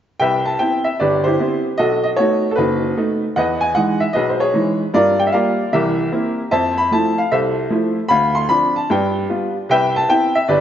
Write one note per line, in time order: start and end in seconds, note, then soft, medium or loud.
0.20 0.54 C2 medium
0.20 0.96 B4 medium
0.20 0.83 E5 medium
0.20 0.43 G5 medium
0.45 0.60 A5 medium
0.59 0.86 B3 soft
0.59 0.87 C4 soft
0.59 0.87 E4 soft
0.59 0.86 G5 medium
0.84 0.99 E5 medium
1.00 1.34 G1 medium
1.00 1.24 G4 medium
1.00 1.75 B4 medium
1.00 1.26 D5 medium
1.24 1.39 E4 medium
1.24 1.75 G4 medium
1.24 1.61 C5 medium
1.40 1.66 B3 medium
1.40 1.66 C4 soft
1.40 1.66 E4 medium
1.78 2.13 B1 medium
1.78 2.17 F#4 medium
1.78 2.17 A4 medium
1.78 2.02 D#5 medium
2.04 2.09 D#5 medium
2.16 2.45 A3 soft
2.16 2.45 B3 soft
2.16 2.46 D#4 soft
2.16 2.56 F#4 medium
2.16 2.50 A4 medium
2.16 2.49 C#5 medium
2.51 2.57 A4 medium
2.56 2.92 F#1 medium
2.56 2.96 D#4 medium
2.56 3.32 F#4 medium
2.56 3.17 B4 medium
2.97 3.24 A3 soft
2.97 3.24 B3 soft
2.97 3.24 D#4 medium
3.36 3.71 E2 medium
3.36 4.12 B4 medium
3.36 4.12 D#5 medium
3.36 3.62 F#5 medium
3.61 3.76 G#5 medium
3.75 4.03 E3 soft
3.75 4.03 G#3 soft
3.75 4.03 D#4 medium
3.75 4.02 F#5 medium
4.00 4.15 E5 medium
4.13 4.50 B1 medium
4.13 4.40 G#4 medium
4.13 4.90 B4 medium
4.13 4.29 D#5 medium
4.29 4.40 C5 medium
4.40 4.91 G#4 medium
4.40 4.77 C#5 medium
4.54 4.81 E3 soft
4.54 4.81 G#3 soft
4.54 4.81 D#4 medium
4.94 5.28 G2 medium
4.94 5.33 F4 medium
4.94 5.33 A#4 medium
4.94 5.21 D5 loud
5.20 5.24 G5 medium
5.27 5.33 E5 medium
5.32 5.61 G3 soft
5.32 5.61 A#3 soft
5.32 5.61 F4 medium
5.32 5.71 A#4 medium
5.32 5.70 D5 medium
5.32 5.70 F5 medium
5.73 6.07 C2 medium
5.73 6.07 E3 medium
5.73 6.48 G4 medium
5.73 6.48 A#4 medium
5.73 6.34 E5 medium
6.12 6.39 A#3 soft
6.12 6.39 C4 soft
6.12 6.40 E4 medium
6.51 6.86 F2 medium
6.51 7.27 C5 medium
6.51 7.27 E5 medium
6.51 6.76 A5 medium
6.78 6.92 B5 medium
6.91 7.19 F3 medium
6.91 7.19 A3 soft
6.91 7.19 E4 medium
6.91 7.16 A5 medium
7.18 7.32 F5 medium
7.32 7.66 C2 medium
7.32 8.07 A4 medium
7.32 8.07 C5 medium
7.32 7.37 E5 medium
7.70 7.98 F3 medium
7.70 7.98 A3 medium
7.70 7.98 E4 medium
8.09 8.44 D2 medium
8.09 8.85 F5 medium
8.09 8.36 B5 loud
8.35 8.48 C6 medium
8.49 8.77 F3 soft
8.49 8.77 C4 soft
8.49 8.77 D4 medium
8.49 8.76 B5 loud
8.76 8.89 A5 medium
8.90 9.24 G2 medium
8.90 9.66 B4 medium
8.90 9.66 D5 soft
8.90 9.14 G5 medium
9.29 9.56 G3 soft
9.29 9.56 B3 soft
9.29 9.56 F4 medium
9.69 10.03 C2 medium
9.69 10.45 B4 medium
9.69 10.34 E5 medium
9.69 9.93 G5 loud
9.96 10.09 A5 loud
10.09 10.35 B3 soft
10.09 10.35 C4 soft
10.09 10.36 E4 medium
10.09 10.35 G5 loud
10.35 10.47 E5 medium
10.48 10.61 G1 medium
10.48 10.61 G4 medium
10.48 10.61 B4 medium
10.48 10.61 D5 medium